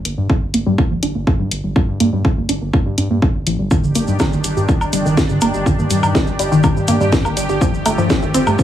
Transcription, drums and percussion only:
0.05 closed hi-hat loud
0.30 kick loud
0.54 closed hi-hat loud
0.78 kick loud
1.03 closed hi-hat loud
1.27 kick loud
1.51 closed hi-hat loud
1.76 kick loud
2.00 closed hi-hat loud
2.25 kick loud
2.49 closed hi-hat loud
2.73 kick loud
2.98 closed hi-hat loud
3.22 kick loud
3.47 closed hi-hat loud
3.71 kick loud
3.71 cabasa soft
3.84 cabasa soft
3.95 closed hi-hat loud
3.95 cabasa medium
4.08 cabasa soft
4.19 kick loud
4.19 snare loud
4.19 cabasa soft
4.19 low woodblock medium
4.33 cabasa soft
4.44 closed hi-hat loud
4.44 cabasa medium
4.57 cabasa soft
4.69 kick loud
4.69 cabasa soft
4.81 cabasa soft
4.81 low woodblock soft
4.93 closed hi-hat loud
4.93 cabasa medium
5.06 cabasa soft
5.17 kick loud
5.17 snare loud
5.17 cabasa medium
5.29 cabasa soft
5.41 closed hi-hat loud
5.41 cabasa medium
5.41 low woodblock medium
5.54 cabasa soft
5.66 kick loud
5.66 cabasa soft
5.79 cabasa soft
5.90 closed hi-hat loud
5.90 cabasa medium
6.03 cabasa soft
6.03 low woodblock medium
6.15 kick loud
6.15 snare loud
6.15 cabasa soft
6.27 cabasa soft
6.39 closed hi-hat loud
6.39 cabasa medium
6.52 cabasa soft
6.63 kick loud
6.63 cabasa soft
6.63 low woodblock medium
6.77 cabasa soft
6.88 closed hi-hat loud
6.88 cabasa medium
7.01 cabasa soft
7.12 kick loud
7.12 snare loud
7.12 cabasa medium
7.25 cabasa soft
7.25 low woodblock medium
7.37 closed hi-hat loud
7.37 cabasa medium
7.49 cabasa soft
7.61 kick loud
7.61 cabasa medium
7.74 cabasa soft
7.86 closed hi-hat loud
7.86 cabasa medium
7.86 low woodblock medium
7.98 cabasa soft
8.10 kick loud
8.10 snare loud
8.10 cabasa medium
8.22 cabasa soft
8.34 closed hi-hat medium
8.34 cabasa medium
8.47 cabasa soft
8.47 low woodblock medium
8.59 kick loud
8.59 cabasa soft

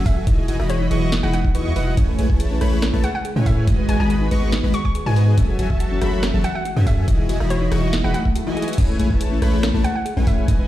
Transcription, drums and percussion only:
0.06 kick loud
0.06 open hi-hat medium
0.27 kick loud
0.27 closed hi-hat medium
0.48 closed hi-hat medium
0.59 cross-stick medium
0.70 closed hi-hat medium
0.91 closed hi-hat medium
1.12 snare loud
1.12 closed hi-hat medium
1.33 closed hi-hat medium
1.45 kick medium
1.55 closed hi-hat medium
1.76 open hi-hat medium
1.97 kick loud
1.97 closed hi-hat medium
2.19 closed hi-hat medium
2.30 kick medium
2.40 closed hi-hat medium
2.61 cross-stick medium
2.61 closed hi-hat medium
2.82 cross-stick medium
2.82 snare loud
2.82 closed hi-hat medium
3.04 closed hi-hat medium
3.25 closed hi-hat medium
3.46 kick loud
3.46 open hi-hat medium
3.67 kick loud
3.67 closed hi-hat medium
3.89 closed hi-hat medium
4.10 closed hi-hat medium
4.31 closed hi-hat medium
4.52 snare loud
4.52 closed hi-hat medium
4.74 closed hi-hat medium
4.85 kick medium
4.95 closed hi-hat medium
5.16 open hi-hat medium
5.38 kick loud
5.38 closed hi-hat medium
5.59 closed hi-hat medium
5.70 kick medium
5.80 closed hi-hat medium
6.01 cross-stick medium
6.01 closed hi-hat medium
6.23 cross-stick medium
6.23 snare loud
6.23 closed hi-hat medium
6.44 closed hi-hat medium
6.65 closed hi-hat medium
6.87 kick loud
6.87 open hi-hat medium
7.08 kick loud
7.08 closed hi-hat medium
7.29 closed hi-hat medium
7.40 cross-stick medium
7.50 closed hi-hat medium
7.72 cross-stick medium
7.72 closed hi-hat medium
7.93 snare loud
7.93 closed hi-hat medium
8.14 closed hi-hat medium
8.25 kick medium
8.36 closed hi-hat medium
8.57 closed hi-hat soft
8.62 closed hi-hat medium
8.68 closed hi-hat medium
8.73 closed hi-hat medium
8.78 kick loud
8.78 closed hi-hat medium
8.78 crash medium
8.99 closed hi-hat medium
9.10 kick medium
9.21 closed hi-hat medium
9.42 cross-stick medium
9.42 closed hi-hat medium
9.63 cross-stick medium
9.63 snare loud
9.63 closed hi-hat medium
9.84 closed hi-hat medium
10.06 closed hi-hat medium
10.27 kick loud
10.27 open hi-hat medium
10.48 kick loud
10.48 closed hi-hat medium

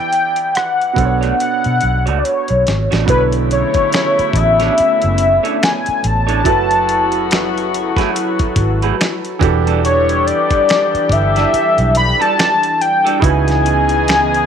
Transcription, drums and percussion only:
0.13 closed hi-hat medium
0.36 closed hi-hat soft
0.55 cross-stick loud
0.55 closed hi-hat medium
0.81 closed hi-hat soft
0.96 kick medium
0.96 closed hi-hat medium
1.23 cross-stick soft
1.23 closed hi-hat soft
1.40 closed hi-hat medium
1.64 closed hi-hat soft
1.81 closed hi-hat medium
2.07 closed hi-hat soft
2.25 closed hi-hat medium
2.48 closed hi-hat soft
2.67 snare medium
2.67 closed hi-hat medium
2.92 snare medium
2.92 closed hi-hat soft
3.08 kick loud
3.08 closed hi-hat medium
3.32 closed hi-hat medium
3.51 closed hi-hat medium
3.74 kick medium
3.74 closed hi-hat soft
3.93 finger snap loud
3.93 snare loud
3.93 closed hi-hat medium
4.19 closed hi-hat soft
4.33 kick medium
4.33 closed hi-hat medium
4.60 snare soft
4.60 closed hi-hat soft
4.78 closed hi-hat medium
5.02 closed hi-hat soft
5.18 closed hi-hat medium
5.45 closed hi-hat soft
5.63 finger snap medium
5.63 snare loud
5.63 closed hi-hat medium
5.86 closed hi-hat medium
6.04 closed hi-hat medium
6.29 closed hi-hat soft
6.45 kick loud
6.45 closed hi-hat medium
6.71 closed hi-hat medium
6.89 closed hi-hat medium
7.12 closed hi-hat soft
7.31 finger snap medium
7.31 snare loud
7.31 closed hi-hat medium
7.58 closed hi-hat soft
7.74 closed hi-hat medium
7.97 kick medium
7.97 snare soft
7.97 closed hi-hat soft
8.16 closed hi-hat medium
8.39 kick medium
8.39 closed hi-hat soft
8.56 kick medium
8.56 closed hi-hat medium
8.82 closed hi-hat soft
9.01 finger snap medium
9.01 snare loud
9.01 closed hi-hat medium
9.25 closed hi-hat soft
9.41 kick loud
9.41 closed hi-hat medium
9.67 closed hi-hat soft
9.85 closed hi-hat medium
10.09 closed hi-hat soft
10.28 closed hi-hat medium
10.50 kick medium
10.50 closed hi-hat soft
10.69 finger snap loud
10.69 snare loud
10.69 closed hi-hat medium
10.95 closed hi-hat soft
11.09 kick medium
11.09 closed hi-hat medium
11.36 snare soft
11.36 closed hi-hat soft
11.54 closed hi-hat medium
11.78 closed hi-hat soft
11.95 closed hi-hat medium
12.22 closed hi-hat soft
12.39 finger snap medium
12.39 snare loud
12.39 closed hi-hat medium
12.63 closed hi-hat medium
12.81 closed hi-hat medium
13.07 closed hi-hat medium
13.22 kick loud
13.22 closed hi-hat medium
13.48 snare soft
13.48 closed hi-hat medium
13.66 closed hi-hat medium
13.89 closed hi-hat medium
14.08 finger snap medium
14.08 snare loud
14.08 closed hi-hat medium
14.34 closed hi-hat soft

